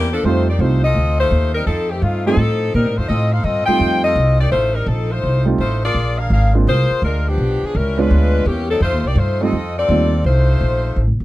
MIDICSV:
0, 0, Header, 1, 5, 480
1, 0, Start_track
1, 0, Tempo, 357569
1, 317, Time_signature, 4, 2, 24, 8
1, 15094, End_track
2, 0, Start_track
2, 0, Title_t, "Saxophone section"
2, 0, Program_c, 0, 65
2, 0, Note_on_c, 0, 52, 79
2, 0, Note_on_c, 0, 58, 86
2, 0, Note_on_c, 0, 60, 82
2, 0, Note_on_c, 0, 67, 100
2, 135, Note_off_c, 0, 58, 0
2, 136, Note_off_c, 0, 60, 0
2, 137, Note_off_c, 0, 67, 0
2, 139, Note_off_c, 0, 52, 0
2, 172, Note_on_c, 0, 53, 79
2, 177, Note_on_c, 0, 62, 78
2, 179, Note_on_c, 0, 58, 79
2, 179, Note_on_c, 0, 69, 86
2, 316, Note_off_c, 0, 53, 0
2, 318, Note_off_c, 0, 62, 0
2, 319, Note_off_c, 0, 69, 0
2, 320, Note_off_c, 0, 58, 0
2, 330, Note_on_c, 0, 63, 74
2, 333, Note_on_c, 0, 72, 90
2, 342, Note_on_c, 0, 57, 76
2, 345, Note_on_c, 0, 65, 75
2, 638, Note_off_c, 0, 63, 0
2, 639, Note_off_c, 0, 72, 0
2, 643, Note_off_c, 0, 57, 0
2, 645, Note_off_c, 0, 65, 0
2, 668, Note_on_c, 0, 74, 68
2, 671, Note_on_c, 0, 58, 63
2, 673, Note_on_c, 0, 63, 66
2, 676, Note_on_c, 0, 67, 69
2, 789, Note_off_c, 0, 63, 0
2, 803, Note_off_c, 0, 74, 0
2, 805, Note_off_c, 0, 58, 0
2, 805, Note_on_c, 0, 63, 70
2, 807, Note_on_c, 0, 65, 62
2, 808, Note_off_c, 0, 67, 0
2, 808, Note_on_c, 0, 57, 62
2, 812, Note_on_c, 0, 72, 78
2, 1114, Note_off_c, 0, 63, 0
2, 1115, Note_off_c, 0, 65, 0
2, 1116, Note_off_c, 0, 57, 0
2, 1118, Note_off_c, 0, 72, 0
2, 1130, Note_on_c, 0, 75, 94
2, 1131, Note_on_c, 0, 69, 76
2, 1134, Note_on_c, 0, 65, 74
2, 1136, Note_on_c, 0, 60, 80
2, 1565, Note_off_c, 0, 75, 0
2, 1566, Note_off_c, 0, 69, 0
2, 1568, Note_off_c, 0, 65, 0
2, 1569, Note_off_c, 0, 60, 0
2, 1609, Note_on_c, 0, 63, 73
2, 1610, Note_on_c, 0, 57, 76
2, 1613, Note_on_c, 0, 72, 85
2, 1619, Note_on_c, 0, 65, 71
2, 2045, Note_off_c, 0, 57, 0
2, 2045, Note_off_c, 0, 63, 0
2, 2047, Note_off_c, 0, 72, 0
2, 2050, Note_off_c, 0, 65, 0
2, 2074, Note_on_c, 0, 70, 93
2, 2076, Note_on_c, 0, 55, 69
2, 2081, Note_on_c, 0, 60, 66
2, 2083, Note_on_c, 0, 63, 74
2, 2224, Note_off_c, 0, 70, 0
2, 2225, Note_off_c, 0, 55, 0
2, 2227, Note_off_c, 0, 60, 0
2, 2228, Note_off_c, 0, 63, 0
2, 2243, Note_on_c, 0, 63, 81
2, 2244, Note_on_c, 0, 69, 85
2, 2246, Note_on_c, 0, 53, 77
2, 2252, Note_on_c, 0, 60, 73
2, 2530, Note_off_c, 0, 63, 0
2, 2531, Note_off_c, 0, 69, 0
2, 2532, Note_off_c, 0, 53, 0
2, 2535, Note_off_c, 0, 60, 0
2, 2551, Note_on_c, 0, 67, 77
2, 2553, Note_on_c, 0, 51, 64
2, 2556, Note_on_c, 0, 60, 67
2, 2557, Note_on_c, 0, 57, 70
2, 2713, Note_off_c, 0, 57, 0
2, 2713, Note_off_c, 0, 67, 0
2, 2714, Note_off_c, 0, 51, 0
2, 2715, Note_off_c, 0, 60, 0
2, 2725, Note_on_c, 0, 65, 77
2, 2729, Note_on_c, 0, 57, 66
2, 2732, Note_on_c, 0, 63, 61
2, 2735, Note_on_c, 0, 60, 62
2, 3025, Note_off_c, 0, 63, 0
2, 3031, Note_off_c, 0, 60, 0
2, 3032, Note_off_c, 0, 65, 0
2, 3035, Note_off_c, 0, 57, 0
2, 3041, Note_on_c, 0, 63, 74
2, 3045, Note_on_c, 0, 69, 94
2, 3047, Note_on_c, 0, 60, 78
2, 3049, Note_on_c, 0, 53, 80
2, 3633, Note_off_c, 0, 63, 0
2, 3635, Note_off_c, 0, 69, 0
2, 3636, Note_off_c, 0, 60, 0
2, 3637, Note_off_c, 0, 53, 0
2, 3696, Note_on_c, 0, 70, 83
2, 3699, Note_on_c, 0, 63, 71
2, 3701, Note_on_c, 0, 60, 69
2, 3704, Note_on_c, 0, 55, 72
2, 3977, Note_off_c, 0, 70, 0
2, 3978, Note_off_c, 0, 63, 0
2, 3979, Note_off_c, 0, 60, 0
2, 3980, Note_off_c, 0, 55, 0
2, 3994, Note_on_c, 0, 63, 77
2, 3995, Note_on_c, 0, 57, 79
2, 3999, Note_on_c, 0, 65, 78
2, 4001, Note_on_c, 0, 72, 90
2, 4137, Note_off_c, 0, 65, 0
2, 4145, Note_on_c, 0, 75, 101
2, 4148, Note_on_c, 0, 60, 78
2, 4151, Note_on_c, 0, 69, 79
2, 4153, Note_on_c, 0, 65, 85
2, 4154, Note_off_c, 0, 57, 0
2, 4154, Note_off_c, 0, 63, 0
2, 4157, Note_off_c, 0, 72, 0
2, 4438, Note_off_c, 0, 69, 0
2, 4440, Note_off_c, 0, 75, 0
2, 4442, Note_off_c, 0, 60, 0
2, 4444, Note_off_c, 0, 65, 0
2, 4454, Note_on_c, 0, 69, 66
2, 4463, Note_on_c, 0, 63, 75
2, 4463, Note_on_c, 0, 72, 82
2, 4464, Note_on_c, 0, 77, 88
2, 4613, Note_off_c, 0, 69, 0
2, 4620, Note_on_c, 0, 75, 87
2, 4626, Note_on_c, 0, 65, 74
2, 4628, Note_off_c, 0, 63, 0
2, 4628, Note_off_c, 0, 72, 0
2, 4628, Note_on_c, 0, 60, 72
2, 4629, Note_off_c, 0, 77, 0
2, 4629, Note_on_c, 0, 69, 72
2, 4892, Note_off_c, 0, 75, 0
2, 4896, Note_off_c, 0, 65, 0
2, 4908, Note_on_c, 0, 75, 99
2, 4912, Note_on_c, 0, 65, 99
2, 4913, Note_on_c, 0, 72, 91
2, 4913, Note_on_c, 0, 79, 109
2, 4943, Note_off_c, 0, 60, 0
2, 4944, Note_off_c, 0, 69, 0
2, 5371, Note_off_c, 0, 75, 0
2, 5373, Note_off_c, 0, 65, 0
2, 5373, Note_off_c, 0, 72, 0
2, 5374, Note_off_c, 0, 79, 0
2, 5427, Note_on_c, 0, 65, 72
2, 5427, Note_on_c, 0, 69, 72
2, 5431, Note_on_c, 0, 75, 97
2, 5432, Note_on_c, 0, 60, 76
2, 5872, Note_off_c, 0, 65, 0
2, 5872, Note_off_c, 0, 69, 0
2, 5874, Note_off_c, 0, 60, 0
2, 5874, Note_off_c, 0, 75, 0
2, 5907, Note_on_c, 0, 74, 91
2, 5908, Note_on_c, 0, 67, 76
2, 5909, Note_on_c, 0, 63, 79
2, 5910, Note_on_c, 0, 58, 79
2, 6030, Note_off_c, 0, 63, 0
2, 6047, Note_on_c, 0, 63, 78
2, 6048, Note_on_c, 0, 65, 81
2, 6052, Note_on_c, 0, 57, 87
2, 6059, Note_off_c, 0, 67, 0
2, 6059, Note_off_c, 0, 74, 0
2, 6060, Note_off_c, 0, 58, 0
2, 6062, Note_on_c, 0, 72, 92
2, 6350, Note_off_c, 0, 63, 0
2, 6350, Note_off_c, 0, 65, 0
2, 6353, Note_off_c, 0, 57, 0
2, 6358, Note_off_c, 0, 72, 0
2, 6374, Note_on_c, 0, 70, 82
2, 6375, Note_on_c, 0, 63, 66
2, 6377, Note_on_c, 0, 60, 60
2, 6383, Note_on_c, 0, 55, 74
2, 6531, Note_off_c, 0, 60, 0
2, 6535, Note_off_c, 0, 63, 0
2, 6544, Note_off_c, 0, 70, 0
2, 6546, Note_on_c, 0, 69, 78
2, 6547, Note_on_c, 0, 60, 65
2, 6548, Note_off_c, 0, 55, 0
2, 6551, Note_on_c, 0, 63, 69
2, 6553, Note_on_c, 0, 53, 65
2, 6863, Note_off_c, 0, 60, 0
2, 6863, Note_off_c, 0, 69, 0
2, 6865, Note_off_c, 0, 63, 0
2, 6866, Note_off_c, 0, 53, 0
2, 6869, Note_on_c, 0, 72, 94
2, 6879, Note_on_c, 0, 63, 84
2, 6881, Note_on_c, 0, 57, 74
2, 6882, Note_on_c, 0, 65, 80
2, 7327, Note_off_c, 0, 72, 0
2, 7329, Note_off_c, 0, 63, 0
2, 7329, Note_off_c, 0, 65, 0
2, 7332, Note_off_c, 0, 57, 0
2, 7519, Note_on_c, 0, 57, 71
2, 7524, Note_on_c, 0, 72, 84
2, 7526, Note_on_c, 0, 63, 71
2, 7531, Note_on_c, 0, 65, 66
2, 7807, Note_off_c, 0, 57, 0
2, 7810, Note_off_c, 0, 72, 0
2, 7811, Note_off_c, 0, 63, 0
2, 7814, Note_off_c, 0, 65, 0
2, 7850, Note_on_c, 0, 65, 85
2, 7850, Note_on_c, 0, 68, 81
2, 7853, Note_on_c, 0, 58, 80
2, 7857, Note_on_c, 0, 74, 95
2, 8284, Note_off_c, 0, 65, 0
2, 8285, Note_off_c, 0, 68, 0
2, 8286, Note_off_c, 0, 58, 0
2, 8288, Note_off_c, 0, 74, 0
2, 8304, Note_on_c, 0, 77, 84
2, 8305, Note_on_c, 0, 62, 71
2, 8305, Note_on_c, 0, 68, 71
2, 8307, Note_on_c, 0, 70, 67
2, 8469, Note_off_c, 0, 77, 0
2, 8470, Note_off_c, 0, 62, 0
2, 8470, Note_off_c, 0, 68, 0
2, 8471, Note_off_c, 0, 70, 0
2, 8494, Note_on_c, 0, 68, 74
2, 8496, Note_on_c, 0, 77, 80
2, 8502, Note_on_c, 0, 62, 64
2, 8502, Note_on_c, 0, 70, 67
2, 8776, Note_off_c, 0, 68, 0
2, 8777, Note_off_c, 0, 77, 0
2, 8780, Note_off_c, 0, 62, 0
2, 8780, Note_off_c, 0, 70, 0
2, 8970, Note_on_c, 0, 65, 78
2, 8970, Note_on_c, 0, 68, 88
2, 8972, Note_on_c, 0, 72, 102
2, 8973, Note_on_c, 0, 58, 87
2, 9407, Note_off_c, 0, 65, 0
2, 9408, Note_off_c, 0, 68, 0
2, 9408, Note_off_c, 0, 72, 0
2, 9409, Note_off_c, 0, 58, 0
2, 9445, Note_on_c, 0, 62, 77
2, 9448, Note_on_c, 0, 56, 71
2, 9457, Note_on_c, 0, 70, 77
2, 9458, Note_on_c, 0, 65, 74
2, 9731, Note_off_c, 0, 62, 0
2, 9733, Note_off_c, 0, 56, 0
2, 9738, Note_off_c, 0, 65, 0
2, 9738, Note_off_c, 0, 70, 0
2, 9778, Note_on_c, 0, 59, 82
2, 9781, Note_on_c, 0, 53, 73
2, 9782, Note_on_c, 0, 62, 76
2, 9782, Note_on_c, 0, 67, 86
2, 10242, Note_off_c, 0, 59, 0
2, 10244, Note_off_c, 0, 53, 0
2, 10244, Note_off_c, 0, 62, 0
2, 10244, Note_off_c, 0, 67, 0
2, 10268, Note_on_c, 0, 53, 62
2, 10272, Note_on_c, 0, 59, 63
2, 10273, Note_on_c, 0, 68, 78
2, 10276, Note_on_c, 0, 62, 69
2, 10412, Note_off_c, 0, 53, 0
2, 10414, Note_off_c, 0, 59, 0
2, 10415, Note_off_c, 0, 68, 0
2, 10416, Note_off_c, 0, 62, 0
2, 10421, Note_on_c, 0, 55, 71
2, 10421, Note_on_c, 0, 61, 74
2, 10422, Note_on_c, 0, 70, 73
2, 10425, Note_on_c, 0, 64, 66
2, 10721, Note_off_c, 0, 55, 0
2, 10721, Note_off_c, 0, 61, 0
2, 10722, Note_off_c, 0, 70, 0
2, 10724, Note_off_c, 0, 64, 0
2, 10745, Note_on_c, 0, 56, 88
2, 10745, Note_on_c, 0, 62, 80
2, 10750, Note_on_c, 0, 65, 81
2, 10754, Note_on_c, 0, 71, 86
2, 11365, Note_on_c, 0, 52, 74
2, 11366, Note_on_c, 0, 61, 73
2, 11371, Note_on_c, 0, 58, 76
2, 11372, Note_off_c, 0, 56, 0
2, 11372, Note_off_c, 0, 62, 0
2, 11374, Note_off_c, 0, 65, 0
2, 11376, Note_off_c, 0, 71, 0
2, 11379, Note_on_c, 0, 67, 86
2, 11674, Note_off_c, 0, 52, 0
2, 11675, Note_off_c, 0, 61, 0
2, 11677, Note_off_c, 0, 58, 0
2, 11681, Note_off_c, 0, 67, 0
2, 11684, Note_on_c, 0, 69, 86
2, 11685, Note_on_c, 0, 63, 68
2, 11688, Note_on_c, 0, 60, 73
2, 11691, Note_on_c, 0, 54, 70
2, 11830, Note_off_c, 0, 69, 0
2, 11831, Note_off_c, 0, 63, 0
2, 11832, Note_off_c, 0, 60, 0
2, 11834, Note_off_c, 0, 54, 0
2, 11847, Note_on_c, 0, 63, 72
2, 11848, Note_on_c, 0, 65, 84
2, 11850, Note_on_c, 0, 72, 92
2, 11851, Note_on_c, 0, 57, 72
2, 12134, Note_off_c, 0, 63, 0
2, 12135, Note_off_c, 0, 65, 0
2, 12135, Note_off_c, 0, 72, 0
2, 12136, Note_off_c, 0, 57, 0
2, 12172, Note_on_c, 0, 58, 70
2, 12172, Note_on_c, 0, 67, 74
2, 12175, Note_on_c, 0, 63, 67
2, 12176, Note_on_c, 0, 74, 88
2, 12316, Note_off_c, 0, 63, 0
2, 12325, Note_off_c, 0, 58, 0
2, 12326, Note_off_c, 0, 67, 0
2, 12326, Note_on_c, 0, 65, 68
2, 12328, Note_off_c, 0, 74, 0
2, 12332, Note_on_c, 0, 63, 68
2, 12333, Note_on_c, 0, 57, 72
2, 12337, Note_on_c, 0, 72, 80
2, 12636, Note_off_c, 0, 65, 0
2, 12638, Note_off_c, 0, 63, 0
2, 12639, Note_off_c, 0, 57, 0
2, 12641, Note_off_c, 0, 72, 0
2, 12643, Note_on_c, 0, 60, 88
2, 12646, Note_on_c, 0, 69, 85
2, 12649, Note_on_c, 0, 75, 90
2, 12650, Note_on_c, 0, 65, 79
2, 13113, Note_off_c, 0, 69, 0
2, 13114, Note_off_c, 0, 65, 0
2, 13117, Note_off_c, 0, 60, 0
2, 13120, Note_off_c, 0, 75, 0
2, 13129, Note_on_c, 0, 69, 70
2, 13130, Note_on_c, 0, 65, 72
2, 13131, Note_on_c, 0, 60, 82
2, 13136, Note_on_c, 0, 74, 91
2, 13721, Note_off_c, 0, 69, 0
2, 13722, Note_off_c, 0, 60, 0
2, 13722, Note_off_c, 0, 65, 0
2, 13725, Note_off_c, 0, 74, 0
2, 13773, Note_on_c, 0, 72, 90
2, 13775, Note_on_c, 0, 65, 75
2, 13780, Note_on_c, 0, 57, 78
2, 13781, Note_on_c, 0, 63, 87
2, 14830, Note_off_c, 0, 72, 0
2, 14831, Note_off_c, 0, 65, 0
2, 14833, Note_off_c, 0, 57, 0
2, 14834, Note_off_c, 0, 63, 0
2, 15094, End_track
3, 0, Start_track
3, 0, Title_t, "Grand piano"
3, 0, Program_c, 1, 0
3, 328, Note_on_c, 1, 55, 62
3, 330, Note_on_c, 1, 57, 60
3, 342, Note_on_c, 1, 60, 60
3, 348, Note_on_c, 1, 65, 74
3, 349, Note_on_c, 1, 63, 57
3, 605, Note_off_c, 1, 55, 0
3, 606, Note_off_c, 1, 57, 0
3, 612, Note_off_c, 1, 60, 0
3, 615, Note_off_c, 1, 63, 0
3, 615, Note_off_c, 1, 65, 0
3, 799, Note_on_c, 1, 55, 45
3, 807, Note_on_c, 1, 57, 45
3, 809, Note_on_c, 1, 60, 46
3, 813, Note_on_c, 1, 63, 42
3, 821, Note_on_c, 1, 65, 53
3, 1080, Note_off_c, 1, 55, 0
3, 1083, Note_off_c, 1, 57, 0
3, 1085, Note_off_c, 1, 60, 0
3, 1087, Note_off_c, 1, 63, 0
3, 1091, Note_off_c, 1, 65, 0
3, 3035, Note_on_c, 1, 55, 71
3, 3043, Note_on_c, 1, 57, 64
3, 3045, Note_on_c, 1, 60, 61
3, 3046, Note_on_c, 1, 63, 61
3, 3054, Note_on_c, 1, 65, 73
3, 3179, Note_off_c, 1, 55, 0
3, 3183, Note_off_c, 1, 57, 0
3, 3183, Note_off_c, 1, 60, 0
3, 3184, Note_off_c, 1, 63, 0
3, 3188, Note_off_c, 1, 65, 0
3, 4937, Note_on_c, 1, 57, 55
3, 4941, Note_on_c, 1, 55, 55
3, 4948, Note_on_c, 1, 60, 58
3, 4953, Note_on_c, 1, 63, 55
3, 4956, Note_on_c, 1, 65, 72
3, 5552, Note_off_c, 1, 57, 0
3, 5554, Note_off_c, 1, 55, 0
3, 5558, Note_off_c, 1, 60, 0
3, 5560, Note_off_c, 1, 63, 0
3, 5562, Note_off_c, 1, 65, 0
3, 7317, Note_on_c, 1, 55, 60
3, 7325, Note_on_c, 1, 57, 55
3, 7332, Note_on_c, 1, 60, 52
3, 7338, Note_on_c, 1, 63, 56
3, 7345, Note_on_c, 1, 65, 68
3, 7479, Note_off_c, 1, 55, 0
3, 7483, Note_off_c, 1, 57, 0
3, 7486, Note_off_c, 1, 60, 0
3, 7490, Note_off_c, 1, 63, 0
3, 7493, Note_off_c, 1, 65, 0
3, 8773, Note_on_c, 1, 56, 60
3, 8781, Note_on_c, 1, 58, 47
3, 8787, Note_on_c, 1, 60, 50
3, 8790, Note_on_c, 1, 62, 54
3, 8792, Note_on_c, 1, 65, 62
3, 8927, Note_off_c, 1, 56, 0
3, 8932, Note_off_c, 1, 58, 0
3, 8934, Note_off_c, 1, 60, 0
3, 8936, Note_off_c, 1, 62, 0
3, 8937, Note_off_c, 1, 65, 0
3, 10708, Note_on_c, 1, 56, 72
3, 10708, Note_on_c, 1, 59, 63
3, 10709, Note_on_c, 1, 73, 64
3, 10715, Note_on_c, 1, 62, 60
3, 10719, Note_on_c, 1, 65, 77
3, 11320, Note_off_c, 1, 56, 0
3, 11320, Note_off_c, 1, 59, 0
3, 11321, Note_off_c, 1, 73, 0
3, 11323, Note_off_c, 1, 62, 0
3, 11326, Note_off_c, 1, 65, 0
3, 12628, Note_on_c, 1, 55, 61
3, 12639, Note_on_c, 1, 57, 55
3, 12647, Note_on_c, 1, 60, 52
3, 12649, Note_on_c, 1, 63, 58
3, 12656, Note_on_c, 1, 65, 63
3, 12777, Note_off_c, 1, 55, 0
3, 12783, Note_off_c, 1, 57, 0
3, 12787, Note_off_c, 1, 60, 0
3, 12788, Note_off_c, 1, 63, 0
3, 12791, Note_off_c, 1, 65, 0
3, 13278, Note_on_c, 1, 57, 49
3, 13282, Note_on_c, 1, 55, 57
3, 13287, Note_on_c, 1, 60, 54
3, 13295, Note_on_c, 1, 63, 49
3, 13300, Note_on_c, 1, 65, 55
3, 13561, Note_off_c, 1, 57, 0
3, 13563, Note_off_c, 1, 55, 0
3, 13565, Note_off_c, 1, 60, 0
3, 13569, Note_off_c, 1, 63, 0
3, 13572, Note_off_c, 1, 65, 0
3, 15094, End_track
4, 0, Start_track
4, 0, Title_t, "Upright bass"
4, 0, Program_c, 2, 32
4, 0, Note_on_c, 2, 40, 92
4, 298, Note_off_c, 2, 40, 0
4, 312, Note_on_c, 2, 41, 86
4, 778, Note_off_c, 2, 41, 0
4, 790, Note_on_c, 2, 36, 87
4, 1257, Note_off_c, 2, 36, 0
4, 1270, Note_on_c, 2, 38, 75
4, 1736, Note_off_c, 2, 38, 0
4, 1756, Note_on_c, 2, 39, 89
4, 2219, Note_off_c, 2, 39, 0
4, 2235, Note_on_c, 2, 41, 82
4, 2698, Note_off_c, 2, 41, 0
4, 2709, Note_on_c, 2, 43, 84
4, 3171, Note_off_c, 2, 43, 0
4, 3179, Note_on_c, 2, 45, 86
4, 3649, Note_off_c, 2, 45, 0
4, 3679, Note_on_c, 2, 46, 92
4, 3833, Note_off_c, 2, 46, 0
4, 3833, Note_on_c, 2, 45, 52
4, 3991, Note_off_c, 2, 45, 0
4, 4001, Note_on_c, 2, 41, 60
4, 4138, Note_off_c, 2, 41, 0
4, 4146, Note_on_c, 2, 45, 85
4, 4604, Note_off_c, 2, 45, 0
4, 4612, Note_on_c, 2, 43, 84
4, 4913, Note_off_c, 2, 43, 0
4, 5096, Note_on_c, 2, 41, 83
4, 5567, Note_off_c, 2, 41, 0
4, 5578, Note_on_c, 2, 36, 90
4, 6048, Note_off_c, 2, 36, 0
4, 6060, Note_on_c, 2, 33, 73
4, 6522, Note_off_c, 2, 33, 0
4, 6530, Note_on_c, 2, 34, 85
4, 7004, Note_off_c, 2, 34, 0
4, 7027, Note_on_c, 2, 36, 76
4, 7486, Note_off_c, 2, 36, 0
4, 7494, Note_on_c, 2, 33, 83
4, 7967, Note_off_c, 2, 33, 0
4, 7979, Note_on_c, 2, 34, 81
4, 8450, Note_off_c, 2, 34, 0
4, 8458, Note_on_c, 2, 32, 88
4, 8930, Note_off_c, 2, 32, 0
4, 8955, Note_on_c, 2, 36, 82
4, 9246, Note_off_c, 2, 36, 0
4, 9422, Note_on_c, 2, 38, 82
4, 9892, Note_off_c, 2, 38, 0
4, 9904, Note_on_c, 2, 35, 72
4, 10201, Note_off_c, 2, 35, 0
4, 10399, Note_on_c, 2, 37, 84
4, 10861, Note_off_c, 2, 37, 0
4, 10881, Note_on_c, 2, 38, 92
4, 11343, Note_off_c, 2, 38, 0
4, 11349, Note_on_c, 2, 40, 89
4, 11812, Note_off_c, 2, 40, 0
4, 11820, Note_on_c, 2, 41, 84
4, 11981, Note_off_c, 2, 41, 0
4, 11981, Note_on_c, 2, 39, 60
4, 12124, Note_off_c, 2, 39, 0
4, 12132, Note_on_c, 2, 36, 64
4, 12281, Note_off_c, 2, 36, 0
4, 12290, Note_on_c, 2, 43, 86
4, 12768, Note_off_c, 2, 43, 0
4, 12783, Note_on_c, 2, 41, 79
4, 13255, Note_off_c, 2, 41, 0
4, 13271, Note_on_c, 2, 39, 90
4, 13740, Note_off_c, 2, 39, 0
4, 13750, Note_on_c, 2, 36, 85
4, 14220, Note_off_c, 2, 36, 0
4, 14239, Note_on_c, 2, 34, 79
4, 14705, Note_off_c, 2, 34, 0
4, 14716, Note_on_c, 2, 33, 76
4, 14869, Note_on_c, 2, 29, 56
4, 14889, Note_off_c, 2, 33, 0
4, 15029, Note_off_c, 2, 29, 0
4, 15037, Note_on_c, 2, 27, 64
4, 15094, Note_off_c, 2, 27, 0
4, 15094, End_track
5, 0, Start_track
5, 0, Title_t, "Muted upright bass strokes"
5, 4931, Note_on_c, 9, 29, 40
5, 5065, Note_off_c, 9, 29, 0
5, 9267, Note_on_c, 9, 29, 34
5, 9401, Note_off_c, 9, 29, 0
5, 10237, Note_on_c, 9, 29, 33
5, 10371, Note_off_c, 9, 29, 0
5, 15094, End_track
0, 0, End_of_file